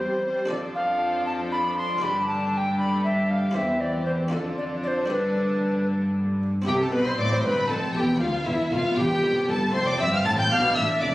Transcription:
0.00 0.39 E2 soft
0.00 0.39 E2 medium
0.00 0.24 G3 soft
0.00 0.24 C4 soft
0.00 0.46 E4 soft
0.00 0.46 G4 soft
0.00 0.24 C5 soft
0.00 0.47 C5 soft
0.00 0.49 C5 medium
0.25 0.50 G3 soft
0.25 0.50 C4 soft
0.25 0.50 C5 soft
0.46 1.96 D4 soft
0.46 1.97 A4 soft
0.46 1.98 D5 soft
0.50 1.99 F2 soft
0.50 1.99 F2 medium
0.50 1.99 F3 medium
0.50 3.52 D4 medium
0.50 1.99 A4 soft
0.50 0.56 D5 medium
0.75 1.25 F5 medium
1.26 1.32 A5 medium
1.52 1.77 B5 medium
1.77 2.04 C6 medium
1.98 3.50 D4 soft
1.98 3.51 G4 soft
1.98 4.32 G4 medium
1.98 3.51 D5 soft
2.03 3.56 G2 medium
2.03 3.52 G2 soft
2.03 3.56 D3 medium
2.03 2.27 B5 medium
2.28 2.53 A5 medium
2.53 2.78 G5 medium
2.53 2.58 A5 medium
2.79 3.04 B5 medium
3.04 3.32 E5 medium
3.31 3.57 F5 medium
3.51 4.28 E4 soft
3.51 4.29 G4 soft
3.51 4.29 C5 soft
3.55 4.29 E2 soft
3.55 4.31 E2 medium
3.55 4.31 E3 soft
3.55 4.31 C4 medium
3.55 3.82 E5 medium
3.81 4.05 D5 medium
4.06 4.12 C5 medium
4.28 5.04 D4 soft
4.28 5.06 F4 soft
4.28 5.07 A4 soft
4.28 4.38 A4 medium
4.32 5.10 F2 soft
4.32 5.06 F2 soft
4.32 6.47 D3 medium
4.32 6.47 D4 medium
4.32 5.09 F4 soft
4.58 4.64 D5 medium
4.83 4.88 D5 medium
4.87 5.09 C5 medium
5.06 6.61 D4 soft
5.06 6.61 G4 soft
5.10 6.43 G2 soft
5.10 6.44 G2 soft
5.10 6.47 D4 soft
5.10 5.87 B4 medium
6.62 8.14 C4 medium
6.62 8.15 E4 medium
6.62 8.16 G4 medium
6.66 6.91 C2 medium
6.66 6.90 C3 medium
6.66 6.91 C3 medium
6.66 8.17 C4 medium
6.66 6.79 G4 medium
6.66 6.72 G5 medium
6.80 6.94 A4 medium
6.80 6.85 A4 medium
6.80 6.93 A5 medium
6.92 7.18 B1 medium
6.92 7.16 B2 medium
6.92 7.18 B2 medium
6.92 7.04 B4 medium
6.92 7.05 B4 medium
6.92 7.05 B5 medium
7.05 7.17 C5 medium
7.05 7.19 C5 medium
7.05 7.19 C6 medium
7.18 7.43 A1 medium
7.18 7.42 A2 medium
7.18 7.44 A2 medium
7.18 7.30 D5 medium
7.18 7.31 D5 medium
7.18 7.31 D6 loud
7.31 7.43 C5 medium
7.31 7.44 C5 medium
7.31 7.45 C6 medium
7.44 7.70 G1 medium
7.44 7.67 G2 medium
7.44 7.70 G2 medium
7.44 7.68 B4 medium
7.44 7.69 B4 medium
7.44 7.69 B5 medium
7.69 7.94 F1 medium
7.69 7.92 F2 medium
7.69 7.95 F2 medium
7.69 7.75 A4 medium
7.69 7.95 A4 medium
7.69 7.95 A5 medium
7.94 8.20 E1 medium
7.94 8.18 E2 medium
7.94 8.20 E2 medium
7.94 8.01 G4 medium
7.94 8.03 G4 medium
7.94 8.20 G5 medium
8.16 8.93 B3 medium
8.16 8.93 D4 medium
8.20 8.44 D2 medium
8.20 8.29 D2 medium
8.20 9.71 B3 medium
8.20 8.48 F4 medium
8.20 8.46 F4 medium
8.20 8.46 F5 medium
8.46 8.54 E1 medium
8.46 8.69 E2 medium
8.46 8.54 E2 medium
8.46 8.71 E4 medium
8.46 8.72 E4 medium
8.46 8.72 E5 medium
8.72 8.80 F1 medium
8.72 8.80 F2 medium
8.72 8.95 F2 medium
8.72 8.97 F4 medium
8.72 8.99 F4 medium
8.72 8.97 F5 medium
8.95 9.05 E1 medium
8.95 9.05 E2 medium
8.95 9.21 E2 medium
8.95 9.71 C4 soft
8.95 9.71 G4 soft
8.95 9.48 G4 medium
8.95 9.49 G4 medium
8.95 9.48 G5 medium
9.22 9.48 F1 medium
9.22 9.46 F2 medium
9.22 9.48 F2 medium
9.48 9.74 G1 medium
9.48 9.72 G2 medium
9.48 9.74 G2 medium
9.48 9.75 A4 medium
9.48 9.55 A4 medium
9.48 9.73 A5 loud
9.70 9.97 A3 medium
9.70 9.98 C4 medium
9.70 11.15 F4 medium
9.70 9.87 C6 loud
9.74 9.99 F1 medium
9.74 10.00 F2 medium
9.74 9.98 F2 medium
9.74 10.49 C4 medium
9.74 9.80 C5 loud
9.74 9.87 C5 medium
9.87 9.93 D5 medium
9.87 10.00 D5 medium
9.87 10.00 D6 loud
10.00 10.25 G1 medium
10.00 10.23 G2 medium
10.00 10.26 G2 medium
10.00 10.05 E5 medium
10.00 10.13 E5 medium
10.00 10.12 E6 medium
10.12 10.27 F5 medium
10.12 10.25 F5 medium
10.12 10.18 F6 medium
10.25 10.51 A1 medium
10.25 10.51 A2 medium
10.25 10.49 A2 medium
10.25 10.38 A5 medium
10.25 10.30 A6 loud
10.38 10.51 G5 medium
10.38 10.44 G5 medium
10.38 10.51 G6 medium
10.50 10.76 B1 medium
10.50 10.76 B2 medium
10.50 10.74 B2 medium
10.50 11.15 D4 medium
10.50 10.76 F5 medium
10.50 10.77 F5 medium
10.50 10.76 F6 loud
10.76 10.84 A1 medium
10.76 10.84 A2 medium
10.76 11.00 A2 medium
10.76 11.03 E5 medium
10.76 11.02 E5 medium
10.76 10.84 E6 loud
11.00 11.15 F1 medium
11.00 11.15 F2 medium
11.00 11.15 D5 medium
11.00 11.08 D6 loud

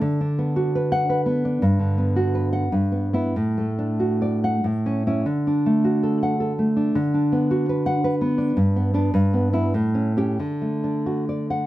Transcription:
0.01 1.59 D3 medium
0.21 1.02 D4 soft
0.39 0.75 B3 medium
0.56 1.36 F#4 medium
0.75 1.08 B4 medium
0.92 1.20 F#5 medium
1.10 1.63 B4 medium
1.26 1.62 B3 medium
1.45 1.63 D4 soft
1.62 2.70 G2 medium
1.79 2.63 D3 soft
1.98 2.73 B3 soft
2.16 2.73 F#4 medium
2.35 2.52 B4 medium
2.53 2.73 F#5 medium
2.72 3.34 G2 medium
2.92 3.12 B3 soft
3.13 3.34 B3 soft
3.13 3.34 E4 medium
3.36 4.61 A2 medium
3.58 4.54 A3 soft
3.79 4.65 D4 soft
4.00 4.64 F#4 soft
4.22 4.44 D5 soft
4.44 4.65 F#5 medium
4.64 5.24 A2 medium
4.86 5.06 C#4 soft
5.07 5.25 C#4 soft
5.07 5.25 E4 medium
5.26 6.91 D3 medium
5.47 6.32 D4 soft
5.66 6.50 A3 soft
5.84 6.68 F#4 soft
6.03 6.39 A4 soft
6.23 6.52 F#5 medium
6.40 6.95 A4 soft
6.59 6.95 A3 soft
6.77 6.95 D4 soft
6.95 8.53 D3 medium
7.14 7.95 D4 soft
7.32 7.69 B3 medium
7.51 8.30 F#4 medium
7.69 8.03 B4 medium
7.86 8.14 F#5 medium
8.04 8.58 B4 medium
8.21 8.57 B3 medium
8.38 8.57 D4 medium
8.57 9.12 G2 medium
8.76 8.93 B3 soft
8.94 9.12 B3 medium
8.94 9.12 D4 medium
9.14 9.72 G2 medium
9.34 9.52 B3 medium
9.53 9.71 B3 soft
9.53 9.72 E4 medium
9.74 10.37 A2 medium
9.95 10.16 C#4 soft
10.17 10.37 C#4 soft
10.17 10.37 G4 medium
10.39 11.67 D3 medium
10.62 11.61 A3 soft
10.84 11.67 D4 soft
11.06 11.29 F#4 soft
11.29 11.50 D5 soft
11.50 11.67 F#5 medium

